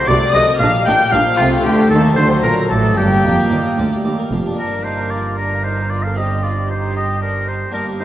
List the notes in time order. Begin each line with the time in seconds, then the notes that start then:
0.07 C2 C3 A3 F#4 D5 D6
0.22 F#4
0.33 C2 C3 F#4 A4 D#5 D#6
0.48 A#4
0.59 A#1 A#2 D4 F5 F6
0.74 G4
0.86 A#1 A#2 A#3 D4 G5 G6
1.00 G4
1.11 A#1 A#2 D4 A#4 F5 F6
1.26 C5
1.37 C2 C3 A3 F4 F5
1.52 G4
1.63 D2 D3 A3 G4 G5
1.78 G4
1.90 D#2 D#3 A4 A5
2.05 A#4
2.16 D2 D3 F#3 C5 C6
2.31 A4
2.44 A#1 A#2 D4 A#4 A#5
2.58 A4
2.70 A1 A2 A4 D5 A5
2.84 D#5
2.97 G1 G2 A#3 G4 G5
3.12 A#4
3.24 F1 F2 D4
3.38 A#4
3.50 D#2 D5
3.65 D#5
3.77 D2 D5
3.92 G4
4.04 D#2 D5
4.19 A#4
4.31 F1 F2 G4
4.45 D4
4.53 G1 A#3 D4
4.58 G2 D4 A#4 D6
4.84 D#4 C5
5.10 F4 D5
5.38 D4 A#4 A#5
5.64 D#4 C5
5.90 F4 D5
6.03 A4 F5
6.14 C4 D#4 G4 D#5 C6
6.43 F4 D5
6.68 D#4 C5
6.96 G4 D#5
7.22 D4 A#4
7.48 D#4 C5
7.71 G1 G2 A#3 D4 G4 A#4
7.76 D6
7.99 D#4 C5